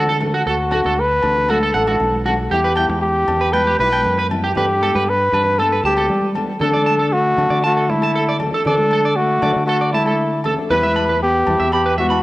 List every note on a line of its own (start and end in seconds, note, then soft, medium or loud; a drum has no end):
0.00 0.42 D3 medium
0.00 0.18 A4 loud
0.08 0.16 A4 medium
0.08 high conga medium
0.20 0.35 F#3 medium
0.20 0.36 A3 medium
0.20 0.36 D4 medium
0.20 0.37 A4 medium
0.20 low conga medium
0.20 low agogo medium
0.34 0.41 F#4 medium
0.46 0.81 D2 medium
0.46 1.01 F#4 medium
0.46 0.54 A4 medium
0.71 0.84 F#3 medium
0.71 0.85 A3 medium
0.71 0.84 D4 medium
0.71 0.80 F#4 medium
0.71 0.82 A4 medium
0.71 low agogo medium
0.85 1.20 D2 medium
0.85 1.01 A3 soft
0.85 1.00 D4 medium
0.85 0.93 A4 medium
0.85 high conga medium
1.00 1.52 B4 loud
1.22 1.70 D2 medium
1.22 low conga medium
1.22 low agogo medium
1.48 1.64 F#3 medium
1.48 1.64 A3 medium
1.48 1.57 F#4 medium
1.48 1.75 A4 medium
1.48 muted nylon-string guitar stroke medium
1.48 high conga medium
1.48 low agogo medium
1.63 1.70 A4 medium
1.74 1.98 A1 medium
1.74 1.87 F#3 soft
1.74 1.87 A3 medium
1.74 1.88 D4 medium
1.74 2.22 A4 medium
1.74 1.87 A4 medium
1.74 1.82 F#5 medium
1.87 2.04 A3 soft
1.87 2.04 D4 soft
1.87 1.95 F#4 medium
1.87 2.03 A4 medium
1.87 high conga medium
1.87 low agogo medium
2.00 2.47 B1 medium
2.00 low conga medium
2.13 high conga medium
2.25 2.41 F#3 medium
2.25 2.42 A3 medium
2.25 2.42 D4 medium
2.25 2.33 F#4 medium
2.25 2.42 A4 medium
2.25 low conga medium
2.25 low agogo medium
2.51 2.86 E2 medium
2.51 2.67 G3 medium
2.51 2.67 B3 medium
2.51 2.68 E4 medium
2.51 2.59 G4 medium
2.51 2.99 G4 medium
2.51 2.68 G4 medium
2.64 2.72 B4 medium
2.76 2.89 G3 medium
2.76 2.90 B3 medium
2.76 2.89 E4 medium
2.76 2.85 G5 medium
2.76 low agogo medium
2.80 2.87 G4 medium
2.89 3.25 E2 medium
2.89 3.06 B3 soft
2.89 3.05 E4 soft
2.89 3.04 G4 medium
2.89 muted clean electric guitar stroke medium
2.89 high conga medium
3.02 3.54 G4 medium
3.28 3.75 E2 medium
3.28 low conga medium
3.28 low agogo medium
3.41 3.49 B4 medium
3.53 3.69 G3 medium
3.53 3.69 B3 medium
3.53 3.70 E4 medium
3.53 3.70 G4 medium
3.53 3.79 B4 loud
3.53 3.61 G5 medium
3.53 high conga medium
3.53 low agogo medium
3.67 3.74 G4 medium
3.79 4.03 B1 medium
3.79 3.92 G3 medium
3.79 3.92 B3 medium
3.79 3.93 E4 medium
3.79 3.91 G4 medium
3.79 4.27 B4 loud
3.79 3.88 B4 medium
3.92 4.09 B3 soft
3.92 4.00 G5 medium
3.92 muted nylon-string guitar stroke medium
3.92 high conga medium
3.92 low agogo medium
4.05 4.52 F#2 medium
4.05 low conga medium
4.18 4.26 B4 medium
4.18 high conga medium
4.30 4.46 G3 soft
4.30 4.46 B3 medium
4.30 4.47 E4 medium
4.30 low conga medium
4.30 low agogo medium
4.44 4.51 G4 medium
4.55 4.91 G2 medium
4.55 4.71 G3 medium
4.55 4.72 B3 medium
4.55 4.72 D4 medium
4.55 5.11 G4 medium
4.55 4.72 A4 medium
4.55 4.65 B4 medium
4.55 low conga medium
4.81 4.94 G3 medium
4.81 4.95 B3 medium
4.81 4.95 D4 medium
4.81 4.90 A4 medium
4.81 4.93 A4 medium
4.81 high conga medium
4.81 low agogo medium
4.94 5.30 G2 medium
4.94 5.12 B3 soft
4.94 5.10 D4 medium
4.94 5.10 A4 medium
4.94 5.03 B4 medium
4.94 high conga medium
5.09 5.60 B4 loud
5.32 5.80 G2 medium
5.32 5.41 B4 medium
5.32 low conga medium
5.32 low agogo medium
5.59 5.74 G3 medium
5.59 5.74 B3 medium
5.59 5.75 D4 medium
5.59 5.84 A4 medium
5.59 5.67 A4 medium
5.59 5.75 A4 medium
5.59 high conga medium
5.59 low agogo medium
5.72 5.80 B4 medium
5.83 6.07 D2 medium
5.83 5.97 G3 medium
5.83 5.98 B3 medium
5.83 6.32 G4 medium
5.83 5.93 A5 medium
5.87 5.98 D4 medium
5.87 5.96 A4 medium
5.97 6.14 B3 soft
5.97 6.13 D4 soft
5.97 6.12 A4 soft
5.97 6.05 A4 medium
5.97 high conga medium
5.97 low agogo medium
6.09 6.57 G3 medium
6.09 low conga medium
6.21 high conga medium
6.35 6.50 G3 medium
6.35 6.51 B3 medium
6.35 6.52 D4 medium
6.35 6.52 A4 medium
6.35 low conga medium
6.35 low agogo medium
6.60 7.34 D3 medium
6.60 6.77 F#3 medium
6.60 6.77 A3 medium
6.60 6.77 D4 medium
6.60 7.15 D4 medium
6.60 6.69 A4 medium
6.60 7.14 A4 medium
6.60 6.78 A4 medium
6.60 low conga medium
6.73 6.81 D5 medium
6.73 high conga medium
6.86 7.02 F#3 medium
6.86 7.03 A3 medium
6.86 6.94 A5 medium
6.86 low agogo medium
6.98 7.07 A4 medium
6.98 high conga medium
7.13 7.64 A3 medium
7.13 7.64 F#4 medium
7.37 7.49 D3 medium
7.37 7.53 F#3 medium
7.37 7.53 A3 medium
7.37 7.54 D4 medium
7.37 7.54 A4 medium
7.37 low conga medium
7.37 low agogo medium
7.50 8.49 D3 medium
7.50 7.58 D5 medium
7.64 7.90 A3 medium
7.64 7.91 F#4 medium
7.64 7.71 A5 medium
7.64 low agogo medium
7.77 7.84 A4 soft
7.88 8.01 F#3 medium
7.88 8.41 A3 medium
7.88 8.01 D4 medium
7.88 8.40 E4 medium
7.88 8.00 A4 medium
7.88 muted clean electric guitar stroke medium
7.88 muted nylon-string guitar stroke medium
7.88 high conga medium
8.02 8.18 A3 soft
8.02 8.17 A4 soft
8.02 8.11 A5 medium
8.02 muted nylon-string guitar stroke soft
8.02 low agogo medium
8.15 8.23 A4 medium
8.29 8.36 D5 medium
8.39 8.52 F#3 medium
8.39 8.53 A3 medium
8.39 8.53 D4 medium
8.39 8.51 A4 medium
8.39 low conga medium
8.39 low agogo medium
8.52 8.69 A3 soft
8.52 8.69 D4 soft
8.52 8.68 A4 soft
8.52 8.62 A4 medium
8.65 9.38 D3 medium
8.65 9.18 D4 medium
8.65 9.17 A4 medium
8.65 8.74 D5 medium
8.65 low conga medium
8.78 high conga medium
8.90 9.06 F#3 medium
8.90 9.07 A3 medium
8.90 9.07 D4 medium
8.90 9.00 A4 medium
8.90 9.08 A4 medium
8.90 low agogo medium
9.05 9.12 D5 medium
9.16 9.65 A3 medium
9.16 9.65 F#4 medium
9.41 9.54 D3 medium
9.41 9.57 F#3 medium
9.41 9.58 A3 medium
9.41 9.59 D4 medium
9.41 9.59 A4 medium
9.41 9.50 D5 medium
9.41 low conga medium
9.41 low agogo medium
9.56 10.54 D3 medium
9.66 9.91 A3 medium
9.66 9.91 F#4 medium
9.66 9.76 A4 medium
9.66 low agogo medium
9.81 9.89 D5 medium
9.93 10.06 F#3 medium
9.93 10.41 A3 medium
9.93 10.07 A3 medium
9.93 10.06 D4 medium
9.93 10.41 E4 medium
9.93 10.05 A4 medium
9.93 10.02 A5 medium
9.93 high conga medium
10.06 10.23 A3 soft
10.06 10.22 D4 soft
10.06 10.22 A4 soft
10.06 10.15 A4 medium
10.06 low agogo medium
10.44 10.57 A3 medium
10.44 10.57 D4 medium
10.44 10.53 A4 medium
10.44 10.55 A4 medium
10.44 low conga medium
10.44 low agogo medium
10.57 10.71 A3 soft
10.57 10.71 D4 soft
10.57 10.70 A4 soft
10.70 11.43 E2 medium
10.70 10.86 G3 medium
10.70 10.86 B3 medium
10.70 11.18 E4 medium
10.70 10.87 E4 medium
10.70 10.87 G4 medium
10.70 10.78 B4 medium
10.70 11.18 B4 loud
10.70 low conga medium
10.83 10.91 E5 medium
10.83 high conga medium
10.95 11.11 G3 medium
10.95 11.12 B3 medium
10.95 11.12 E4 medium
10.95 11.13 G4 medium
10.95 11.04 B5 medium
10.95 low agogo medium
11.08 11.17 B4 medium
11.08 high conga medium
11.22 11.70 B3 medium
11.22 11.70 G4 medium
11.46 11.59 E2 medium
11.46 11.62 G3 medium
11.46 11.63 B3 medium
11.46 11.64 E4 medium
11.46 11.64 G4 medium
11.46 low conga medium
11.46 low agogo medium
11.60 12.23 E2 medium
11.60 11.68 E5 medium
11.72 11.97 B3 medium
11.72 11.97 G4 medium
11.72 11.81 B5 medium
11.72 low agogo medium
11.86 11.93 B4 medium
11.98 12.11 G3 medium
11.98 12.23 B3 medium
11.98 12.12 B3 medium
11.98 12.10 E4 medium
11.98 12.23 F#4 medium
11.98 12.09 G4 medium
11.98 12.06 E5 medium
11.98 high conga medium
12.10 12.23 B3 soft
12.10 12.23 E4 soft
12.10 12.23 G4 soft
12.10 12.18 B5 medium
12.10 low agogo medium